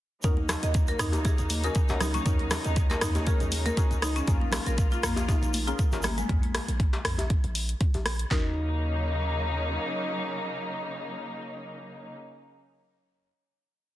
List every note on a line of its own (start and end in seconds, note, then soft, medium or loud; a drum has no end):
0.23 0.56 D#2 loud
0.23 6.25 C#3 medium
0.23 4.23 F#3 medium
0.23 2.24 A#3 medium
0.23 0.35 C#4 medium
0.23 4.23 D#4 medium
0.23 0.35 D#4 medium
0.23 0.37 D#4 medium
0.23 0.35 F#4 medium
0.23 0.35 A#4 medium
0.23 kick loud
0.23 closed hi-hat medium
0.23 mid tom medium
0.23 shaker medium
0.37 muted conga medium
0.49 cross-stick loud
0.49 open hi-hat loud
0.49 djembe slap medium
0.49 low conga medium
0.49 shaker loud
0.63 0.93 D#2 loud
0.63 0.73 D#5 medium
0.63 closed hi-hat soft
0.63 shaker soft
0.74 kick loud
0.74 closed hi-hat medium
0.74 muted conga soft
0.74 shaker medium
0.87 0.99 A#4 loud
0.87 closed hi-hat soft
0.87 high conga medium
0.87 shaker soft
0.99 1.31 D#2 medium
0.99 1.12 D#4 loud
0.99 cross-stick medium
0.99 mid tom medium
0.99 open hi-hat medium
0.99 shaker medium
1.12 closed hi-hat soft
1.12 muted conga medium
1.12 djembe tone medium
1.12 high conga medium
1.12 shaker soft
1.25 1.37 G#4 medium
1.25 kick loud
1.25 closed hi-hat medium
1.25 djembe tone medium
1.25 shaker medium
1.38 1.69 D#2 medium
1.38 closed hi-hat soft
1.38 shaker soft
1.50 open hi-hat loud
1.50 muted conga soft
1.50 high conga medium
1.50 shaker medium
1.64 1.80 C#4 medium
1.64 1.80 D#4 medium
1.64 1.80 F#4 medium
1.64 1.80 G#4 loud
1.64 1.75 A#4 loud
1.64 closed hi-hat soft
1.64 shaker soft
1.75 kick loud
1.75 closed hi-hat medium
1.75 shaker medium
1.89 2.20 C#2 medium
1.89 2.05 C#4 medium
1.89 2.05 D#4 medium
1.89 2.05 F#4 medium
1.89 2.05 A#4 medium
1.89 closed hi-hat soft
1.89 djembe slap medium
1.89 shaker soft
2.00 2.13 D#4 loud
2.00 cross-stick medium
2.00 open hi-hat medium
2.00 muted conga medium
2.00 djembe tone medium
2.00 high conga medium
2.00 low conga loud
2.00 shaker medium
2.14 2.25 C#4 loud
2.14 closed hi-hat soft
2.14 high conga medium
2.14 low conga medium
2.14 shaker soft
2.26 2.58 D#2 loud
2.26 6.25 G#3 medium
2.26 3.24 C#4 loud
2.26 3.24 D#4 medium
2.26 2.38 D#4 medium
2.26 3.24 F#4 medium
2.26 3.24 A#4 loud
2.26 kick loud
2.26 closed hi-hat medium
2.26 mid tom medium
2.26 shaker medium
2.39 closed hi-hat soft
2.39 muted conga medium
2.51 cross-stick loud
2.51 open hi-hat loud
2.51 djembe slap medium
2.51 low conga medium
2.51 shaker loud
2.65 2.96 D#2 loud
2.65 2.75 D#5 medium
2.65 closed hi-hat soft
2.65 shaker soft
2.76 kick loud
2.76 closed hi-hat medium
2.76 muted conga soft
2.76 shaker medium
2.90 3.00 A#4 loud
2.90 closed hi-hat soft
2.90 djembe slap medium
2.90 high conga medium
2.90 shaker soft
3.01 3.33 D#2 medium
3.01 3.14 D#4 loud
3.01 cross-stick loud
3.01 mid tom medium
3.01 open hi-hat medium
3.01 shaker loud
3.15 closed hi-hat soft
3.15 muted conga medium
3.15 djembe tone medium
3.15 high conga medium
3.15 shaker soft
3.27 3.74 C#4 medium
3.27 3.74 D#4 medium
3.27 3.74 F#4 medium
3.27 3.39 G#4 medium
3.27 3.74 A#4 medium
3.27 kick loud
3.27 closed hi-hat medium
3.27 high conga loud
3.27 shaker medium
3.40 3.71 D#2 medium
3.40 closed hi-hat soft
3.40 low conga medium
3.40 shaker soft
3.51 open hi-hat loud
3.51 muted conga soft
3.51 high conga medium
3.51 shaker medium
3.66 3.77 A#4 loud
3.66 closed hi-hat soft
3.66 high conga loud
3.66 shaker soft
3.77 3.94 C#4 loud
3.77 3.94 D#4 medium
3.77 3.94 F#4 medium
3.77 3.94 G#4 loud
3.77 kick loud
3.77 closed hi-hat medium
3.77 shaker medium
3.91 4.21 C#2 medium
3.91 closed hi-hat soft
3.91 shaker soft
4.02 4.15 D#4 loud
4.02 cross-stick medium
4.02 open hi-hat medium
4.02 muted conga medium
4.02 shaker medium
4.16 4.26 C#4 loud
4.16 closed hi-hat soft
4.16 shaker soft
4.27 4.59 A#1 loud
4.27 4.40 A#3 medium
4.27 6.28 A#3 medium
4.27 4.39 C#4 medium
4.27 4.39 F4 medium
4.27 6.28 F4 medium
4.27 4.39 G#4 medium
4.27 4.39 A#4 medium
4.27 kick loud
4.27 closed hi-hat medium
4.27 mid tom medium
4.27 shaker medium
4.41 muted conga medium
4.52 cross-stick loud
4.52 open hi-hat loud
4.52 djembe slap medium
4.52 low conga loud
4.52 shaker medium
4.66 4.97 A#1 loud
4.66 4.77 A#4 medium
4.66 closed hi-hat soft
4.66 shaker soft
4.78 kick loud
4.78 closed hi-hat medium
4.78 muted conga soft
4.78 shaker medium
4.90 5.02 F4 loud
4.90 closed hi-hat soft
4.90 high conga medium
4.90 shaker soft
5.03 5.35 A#1 medium
5.03 5.16 A#3 loud
5.03 cross-stick loud
5.03 mid tom medium
5.03 open hi-hat medium
5.03 shaker loud
5.16 closed hi-hat soft
5.16 muted conga medium
5.16 djembe tone loud
5.16 high conga medium
5.16 shaker soft
5.28 5.41 D#4 medium
5.28 kick loud
5.28 closed hi-hat medium
5.28 djembe tone loud
5.28 shaker medium
5.42 5.73 A#1 medium
5.42 closed hi-hat soft
5.42 shaker soft
5.53 open hi-hat loud
5.53 muted conga soft
5.53 high conga medium
5.53 shaker medium
5.67 5.83 C#4 medium
5.67 5.83 F4 medium
5.67 5.78 F4 loud
5.67 5.83 G#4 medium
5.67 5.83 A#4 loud
5.67 closed hi-hat soft
5.67 shaker soft
5.79 kick loud
5.79 closed hi-hat medium
5.79 shaker medium
5.92 6.23 G#1 medium
5.92 6.08 C#4 medium
5.92 6.08 F4 medium
5.92 6.08 G#4 medium
5.92 6.08 A#4 medium
5.92 closed hi-hat soft
5.92 djembe slap medium
5.92 shaker soft
6.03 6.16 A#3 loud
6.03 cross-stick medium
6.03 open hi-hat medium
6.03 muted conga medium
6.03 high conga medium
6.03 djembe tone medium
6.03 low conga loud
6.03 shaker loud
6.17 6.28 G#3 loud
6.17 closed hi-hat soft
6.17 high conga medium
6.17 low conga medium
6.17 shaker soft
6.29 6.61 A#1 loud
6.29 kick loud
6.29 closed hi-hat medium
6.29 mid tom loud
6.43 closed hi-hat soft
6.54 cross-stick loud
6.54 open hi-hat medium
6.54 djembe slap medium
6.68 6.99 A#1 loud
6.68 closed hi-hat soft
6.80 kick loud
6.80 closed hi-hat medium
6.93 closed hi-hat soft
6.93 djembe slap medium
7.05 7.36 A#1 medium
7.05 cross-stick loud
7.05 mid tom medium
7.05 open hi-hat medium
7.18 closed hi-hat soft
7.18 djembe tone medium
7.30 kick loud
7.30 closed hi-hat medium
7.44 7.74 A#1 medium
7.44 closed hi-hat soft
7.55 open hi-hat loud
7.69 closed hi-hat soft
7.81 kick loud
7.81 closed hi-hat medium
7.94 8.25 A#1 medium
7.94 closed hi-hat soft
7.94 djembe tone medium
8.06 cross-stick medium
8.06 open hi-hat medium
8.19 closed hi-hat soft
8.31 9.78 D#2 loud
8.31 12.14 C#3 medium
8.31 12.13 F#3 medium
8.31 12.14 A#3 medium
8.31 12.13 C#4 medium
8.31 8.54 D#4 loud
8.31 12.13 D#4 medium
8.31 12.13 F#4 medium
8.31 12.13 A#4 loud
8.31 kick loud
8.31 snare loud
8.31 clap medium